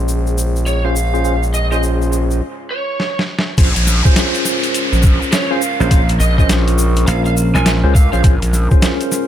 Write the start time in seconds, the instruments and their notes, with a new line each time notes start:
Already playing: analog synth bass A#1, analog synth pad G#3 C#4 F4 G#4, tine electric piano C#4 F4 G#4 C5
0.08 shaker
0.27 shaker
0.38 shaker
0.56 shaker
0.66 lead electric guitar C#5, shaker
0.85 tine electric piano C#4 F4 G#4 C5, lead electric guitar F5
0.96 shaker
1.14 tine electric piano C#4 F4 G#4 C5, shaker
1.25 tine electric piano C#4 F4 G#4 C5, shaker
1.43 shaker
1.54 lead electric guitar D#5, shaker
1.72 tine electric piano C#4 F4 G#4 C5, lead electric guitar D#5, shaker
1.83 shaker
2.02 shaker
2.12 shaker
2.31 shaker
2.71 lead electric guitar C#5
3.00 snare
3.19 snare
3.39 snare
3.58 analog synth bass A#1, analog synth pad G#3 C#4 F4 A#4, tine electric piano C#4 F4 G#4 C5, kick, closed hi-hat, crash, downlifter, shaker
3.76 analog synth bass A#1, closed hi-hat, shaker
3.87 snare, shaker
4.05 tine electric piano C#4 F4 G#4 C5, kick, shaker
4.16 snare, closed hi-hat, shaker
4.34 closed hi-hat, shaker
4.45 snare, shaker
4.63 closed hi-hat, shaker
4.74 closed hi-hat, shaker
4.93 analog synth bass A#1, snare, shaker
5.03 kick, shaker
5.22 shaker
5.32 lead electric guitar C#5, snare, closed hi-hat, shaker
5.51 tine electric piano C#4 F4 G#4 C5, lead electric guitar F5
5.62 shaker
5.80 slap bass A#1, tine electric piano C#4 F4 G#4 C5, shaker
5.91 tine electric piano C#4 F4 G#4 C5, kick, closed hi-hat, shaker
6.09 closed hi-hat, shaker
6.20 analog synth bass A#1, lead electric guitar D#5, shaker
6.38 tine electric piano C#4 F4 G#4 C5, lead electric guitar D#5, kick, shaker
6.49 snare, closed hi-hat, shaker
6.68 closed hi-hat, shaker
6.78 shaker
6.96 closed hi-hat, shaker
7.07 slap bass A#1, lead electric guitar F5, closed hi-hat, shaker
7.26 lead electric guitar F5, shaker
7.37 shaker
7.55 slap bass A#1, lead electric guitar G#5, shaker
7.66 snare, closed hi-hat, shaker
7.84 analog synth bass C#2, tine electric piano C#4 F4 G#4 C5
7.95 lead electric guitar F5, kick, shaker
8.13 analog synth bass A#1, tine electric piano C#4 F4 G#4 C5, lead electric guitar F5, shaker
8.24 analog synth bass A#1, tine electric piano C#4 F4 G#4 C5, kick, closed hi-hat, shaker
8.42 analog synth bass A#1, closed hi-hat, shaker
8.53 snare, shaker
8.71 tine electric piano C#4 F4 G#4 C5, kick, shaker
8.82 snare, closed hi-hat, shaker
9.01 closed hi-hat, shaker
9.12 snare, shaker